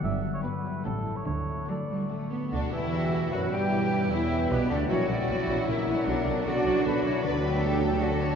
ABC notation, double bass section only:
X:1
M:3/4
L:1/8
Q:1/4=153
K:D
V:1 name="Double bass section" clef=bass
G,,,2 z2 A,,,2 | D,,2 z4 | [K:Bm] D,, E,,3 F,, G,,- | G,,2 E,,2 B,,, D,, |
^A,,, A,,, A,,, A,,, A,,, A,,, | B,,, B,,, B,,, B,,, B,,, B,,, | [K:D] D,,6 |]